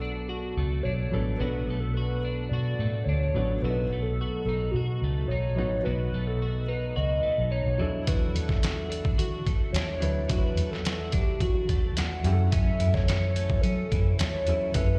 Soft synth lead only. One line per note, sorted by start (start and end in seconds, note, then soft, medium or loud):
0.01 0.30 A4 medium
0.29 0.84 F#4 medium
0.83 1.38 C#5 medium
1.38 1.81 B4 medium
1.80 1.95 A4 medium
1.93 2.49 B4 loud
2.49 3.06 D5 medium
3.04 3.63 C#5 medium
3.62 4.02 B4 medium
4.02 4.42 A4 medium
4.45 4.73 A4 medium
4.71 5.29 F#4 medium
5.28 5.83 C#5 medium
5.84 6.29 B4 medium
6.27 6.70 A4 loud
6.68 6.98 B4 medium
6.96 7.52 D#5 medium
7.51 8.06 C#5 loud
8.07 8.50 B4 loud
8.48 8.88 A4 medium
8.89 9.16 A4 medium
9.19 9.70 F#4 medium
9.73 10.31 C#5 loud
10.29 10.72 B4 medium
10.71 11.14 A4 medium
11.12 11.41 G4 medium
11.41 11.99 F#4 medium
11.97 12.53 F#5 loud
12.51 12.95 E5 loud
12.94 13.34 C#5 loud
13.35 13.63 C#5 loud
13.61 14.19 A4 medium
14.18 14.73 C#5 loud
14.74 14.99 B4 loud